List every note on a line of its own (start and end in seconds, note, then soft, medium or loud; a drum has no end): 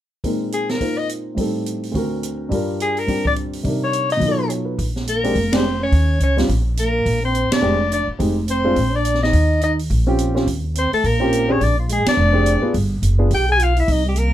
0.24 1.38 A#2 soft
0.24 1.38 G#3 soft
0.24 1.36 C4 soft
0.24 0.79 D#4 soft
0.24 1.38 A#4 soft
0.24 kick soft
0.24 open hi-hat soft
0.52 0.72 G#4 medium
0.52 closed hi-hat soft
0.69 0.99 A#4 medium
0.69 snare soft
0.69 open hi-hat soft
0.79 1.37 A#3 soft
0.79 1.37 D#4 soft
0.79 1.38 F4 soft
0.79 1.38 C5 soft
0.79 kick soft
0.79 open hi-hat soft
0.98 1.09 D#5 medium
1.09 closed hi-hat soft
1.35 1.93 A2 soft
1.35 1.94 G3 soft
1.35 1.93 C4 soft
1.35 kick soft
1.35 open hi-hat soft
1.39 1.95 D#4 soft
1.39 1.96 A4 soft
1.66 closed hi-hat soft
1.83 open hi-hat soft
1.92 2.50 D2 soft
1.92 2.51 D3 soft
1.92 2.51 C4 soft
1.92 2.52 F#4 soft
1.92 kick soft
1.92 open hi-hat soft
1.97 2.52 A#4 soft
2.23 closed hi-hat soft
2.49 3.64 G2 soft
2.49 3.05 G3 soft
2.49 3.07 D4 soft
2.49 3.66 F4 soft
2.49 kick soft
2.49 open hi-hat soft
2.54 3.66 A#4 medium
2.80 3.01 G#4 medium
2.80 closed hi-hat soft
2.97 3.27 A#4 medium
2.97 open hi-hat soft
3.07 3.63 G3 soft
3.07 3.65 C4 soft
3.07 3.64 D4 soft
3.07 3.66 G4 soft
3.07 kick soft
3.07 open hi-hat soft
3.25 3.33 D5 medium
3.25 kick soft
3.36 closed hi-hat soft
3.53 open hi-hat soft
3.63 4.21 C3 soft
3.63 4.21 G3 soft
3.63 4.22 D4 soft
3.63 4.21 D#4 soft
3.63 kick soft
3.63 open hi-hat soft
3.68 4.23 A#4 soft
3.84 4.10 C#5 medium
3.93 closed hi-hat soft
4.10 4.48 D#5 medium
4.10 open hi-hat soft
4.17 4.76 B2 soft
4.17 4.78 F#3 soft
4.21 4.79 D#4 soft
4.21 4.80 F4 soft
4.21 kick soft
4.21 open hi-hat soft
4.28 4.82 A4 medium
4.49 4.71 C#5 soft
4.49 closed hi-hat soft
4.65 4.85 B4 soft
4.79 5.33 A#1 medium
4.79 kick soft
4.79 open hi-hat soft
4.96 snare soft
5.07 5.54 A#3 medium
5.07 5.57 A#4 medium
5.07 closed hi-hat soft
5.24 5.34 G#3 medium
5.24 5.34 C4 medium
5.24 5.34 D4 medium
5.24 5.35 G4 medium
5.24 open hi-hat soft
5.35 5.89 F1 medium
5.35 kick soft
5.35 open hi-hat soft
5.52 5.63 G#3 medium
5.52 5.63 C4 medium
5.52 5.80 C4 soft
5.52 5.63 D4 medium
5.52 5.63 G4 medium
5.52 5.82 C5 medium
5.52 snare medium
5.52 ride medium
5.80 6.18 C#4 medium
5.80 6.19 C#5 medium
5.92 6.19 D#2 medium
5.92 kick soft
5.92 open hi-hat soft
6.20 6.47 C#2 medium
6.20 6.37 C#4 medium
6.20 6.38 C#5 medium
6.20 closed hi-hat soft
6.37 6.47 G3 medium
6.37 6.48 C4 soft
6.37 6.48 C#4 soft
6.37 6.48 F4 medium
6.37 snare soft
6.37 open hi-hat soft
6.49 7.03 A#1 medium
6.49 kick soft
6.49 open hi-hat soft
6.77 7.21 A#3 medium
6.77 7.21 A#4 medium
6.77 closed hi-hat soft
7.05 7.48 A#1 medium
7.05 kick soft
7.05 open hi-hat soft
7.23 7.50 C4 medium
7.23 7.50 C5 medium
7.35 closed hi-hat soft
7.51 7.89 D4 medium
7.51 7.89 D5 medium
7.51 muted upright bass stroke soft
7.51 snare medium
7.51 ride medium
7.61 8.05 F1 medium
7.61 7.77 G#3 medium
7.61 7.78 C4 medium
7.61 7.78 D4 soft
7.61 7.78 G4 medium
7.91 8.07 D4 medium
7.91 8.08 D5 medium
7.91 closed hi-hat soft
8.07 muted upright bass stroke soft
8.19 8.74 F1 medium
8.19 8.35 G#3 soft
8.19 8.35 C4 soft
8.19 8.35 D#4 soft
8.19 8.35 G4 medium
8.19 kick soft
8.19 open hi-hat soft
8.48 8.96 C4 medium
8.48 8.97 C5 medium
8.48 closed hi-hat soft
8.64 8.75 G#3 medium
8.64 8.75 C4 medium
8.64 8.75 D4 soft
8.64 8.75 F4 medium
8.76 9.30 A#1 medium
8.76 kick soft
8.76 open hi-hat soft
8.94 9.22 D4 medium
8.94 9.23 D5 medium
9.05 closed hi-hat soft
9.14 snare soft
9.23 9.59 D#4 medium
9.23 9.59 D#5 medium
9.23 snare soft
9.33 9.87 D#2 medium
9.33 kick soft
9.33 open hi-hat soft
9.61 9.78 D#4 medium
9.61 9.73 D#5 medium
9.61 closed hi-hat soft
9.79 open hi-hat soft
9.90 10.44 A#1 medium
9.90 kick soft
9.90 open hi-hat soft
10.07 10.33 C4 medium
10.07 10.34 C#4 medium
10.07 10.34 F4 medium
10.07 10.34 G4 medium
10.19 closed hi-hat soft
10.35 10.45 C4 medium
10.35 10.46 C#4 medium
10.35 10.46 F4 medium
10.35 10.46 G4 medium
10.35 snare soft
10.47 10.89 D#2 medium
10.47 kick soft
10.47 open hi-hat soft
10.75 10.92 C4 medium
10.75 10.93 C5 medium
10.75 closed hi-hat soft
10.93 11.07 A3 medium
10.93 11.08 A4 medium
10.93 open hi-hat soft
11.04 11.58 A#1 medium
11.04 11.51 A#3 medium
11.04 11.53 A#4 medium
11.04 kick soft
11.04 open hi-hat soft
11.20 11.47 C4 medium
11.20 11.47 C#4 medium
11.20 11.48 F4 medium
11.20 11.47 G4 medium
11.33 closed hi-hat soft
11.49 11.59 C4 medium
11.49 11.63 C#4 medium
11.49 11.59 D4 medium
11.49 11.59 G4 medium
11.49 11.60 G#4 medium
11.49 11.64 C#5 medium
11.61 12.03 A#1 medium
11.61 11.78 D4 medium
11.61 11.79 D5 medium
11.61 kick soft
11.61 open hi-hat soft
11.78 11.91 F3 soft
11.78 11.94 F4 soft
11.89 12.05 G#3 medium
11.89 12.08 G#4 medium
11.89 closed hi-hat soft
12.06 12.70 D4 medium
12.06 12.72 D5 medium
12.06 muted upright bass stroke soft
12.06 snare medium
12.06 ride medium
12.17 12.60 F1 medium
12.33 12.60 C4 medium
12.33 12.61 D4 medium
12.33 12.61 G4 medium
12.33 12.61 G#4 medium
12.46 closed hi-hat soft
12.62 12.73 B3 medium
12.62 12.73 D4 medium
12.62 12.73 F4 medium
12.62 12.73 G#4 medium
12.62 muted upright bass stroke soft
12.74 13.00 G1 medium
12.74 kick soft
12.74 open hi-hat soft
13.02 13.29 F#1 medium
13.02 closed hi-hat soft
13.19 13.29 B3 medium
13.19 13.29 D4 medium
13.19 13.30 F4 medium
13.19 13.30 G#4 medium
13.30 13.85 B1 medium
13.30 13.47 G4 medium
13.30 kick soft
13.30 open hi-hat soft
13.34 13.49 G5 medium
13.49 13.62 G#4 medium
13.49 13.65 G#5 medium
13.60 13.76 F4 medium
13.60 13.79 F5 medium
13.60 closed hi-hat soft
13.77 13.91 E4 medium
13.77 13.93 E5 medium
13.77 open hi-hat soft
13.88 14.33 C2 medium
13.88 14.05 D#4 medium
13.88 kick soft
13.88 open hi-hat soft
13.92 14.07 D#5 medium
14.06 14.20 G3 soft
14.06 14.20 G4 soft
14.16 14.33 A#3 medium
14.16 14.33 A#4 medium
14.16 closed hi-hat soft